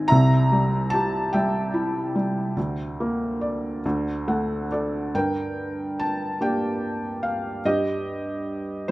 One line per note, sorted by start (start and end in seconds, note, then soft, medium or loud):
0.00 0.12 D#3 medium
0.00 0.12 C4 medium
0.00 0.11 D#4 soft
0.00 0.12 G#5 medium
0.08 2.54 C2 medium
0.08 2.54 C3 medium
0.08 1.29 E5 medium
0.08 0.94 A#5 loud
0.52 1.33 G3 medium
0.90 2.54 G4 medium
0.90 1.34 A5 medium
1.33 2.14 G3 medium
1.33 4.67 E5 medium
1.33 4.67 G5 medium
1.74 2.54 E4 medium
2.15 2.56 G3 medium
2.57 3.80 D2 soft
2.57 3.81 D3 medium
3.00 3.83 A#3 soft
3.41 3.83 D5 medium
3.85 5.11 D2 medium
3.85 5.11 D3 medium
4.28 5.12 A3 soft
4.28 4.68 F#5 medium
4.72 5.14 A4 soft
4.72 5.12 D5 medium
5.15 7.60 G2 soft
5.15 6.37 A#4 soft
5.15 6.02 G5 medium
5.99 6.42 A5 medium
6.41 7.61 A#3 soft
6.41 7.61 D4 soft
6.41 7.61 G4 soft
6.41 7.26 G5 medium
7.23 7.61 F5 medium
7.65 8.91 G2 soft
7.65 8.85 G4 medium
7.65 8.91 D#5 medium